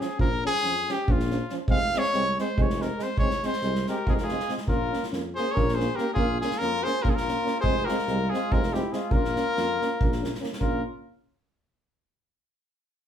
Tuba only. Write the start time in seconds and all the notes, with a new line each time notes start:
0.19 A#1
0.65 F2
1.09 A#1
1.70 F1
2.14 C2
2.57 F1
3.18 F1
3.62 C2
4.06 F1
4.66 A#1
5.12 F2
5.56 A#1
6.16 A#1
6.61 F2
7.03 A#1
7.64 F1
8.08 C2
8.52 F1
9.11 A#1
9.56 F2
10.01 A#1
10.61 A#1